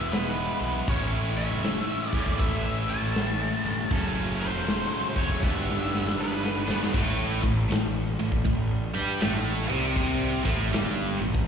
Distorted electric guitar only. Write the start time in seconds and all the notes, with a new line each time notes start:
Already playing: E3 G#3 B3 E4
0.88 A2 E3 A3 C#4 E4
2.14 A2 E3 A3 C#4 E4
3.92 F#2 C#3 F#3 A3 C#4
5.16 F#2 C#3 F#3 A3 C#4
5.43 G2 D3 G3 B3 D4
6.67 G2 D3 G3 B3 D4
6.94 A2 A3
7.44 A2
7.70 A2
8.19 A2
8.44 A2
8.94 G3 G4
9.20 A2 A3
9.69 C3 C4
10.44 A2 A3
10.72 G2 G3
11.20 A2